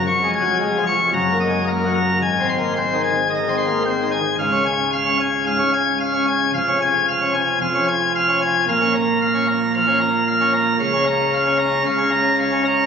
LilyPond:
<<
  \new Staff \with { instrumentName = "Pipe organ" } { \time 4/4 \key des \major \tempo 4 = 112 des'''8 aes''8 aes'8 des'''8 bes''8 ees''8 bes'8 bes''8 | aes''8 c'''8 c''8 aes''8 ees''8 c'''8 c''8 aes''8 | f''8 aes''8 f''8 aes''8 f''8 aes''8 f''8 aes''8 | f''8 aes''8 f''8 aes''8 f''8 aes''8 f''8 aes''8 |
f''8 bes''8 f''8 bes''8 f''8 bes''8 f''8 bes''8 | f''8 bes''8 f''8 bes''8 f''8 bes''8 f''8 bes''8 | }
  \new Staff \with { instrumentName = "Pipe organ" } { \clef bass \time 4/4 \key des \major << { \tuplet 3/2 { f,8 aes8 ges8 aes8 f8 r8 ges,8 bes8 aes8 bes8 ges8 r8 } | \tuplet 3/2 { aes,8 c'8 bes8 c'8 ees8 r8 ees8 c'8 bes8 c'8 ees8 r8 } | des,16 des'16 r8. des'16 r8 aes,16 des'16 r8. des'16 r8 | f,16 des'16 r8. des'16 r8 f,16 des'16 r8. des'16 r8 |
bes,16 des'16 r8. des'16 r8 f16 des'16 r8. des'16 r8 | des16 des'16 r8. des'16 r8 des16 des'16 r8. des'16 r8 | } \\ { f,,2 ges,,2 | aes,,1 | des,,1 | f,,2 f,,2 |
bes,,1 | des,2 des,2 | } >> }
>>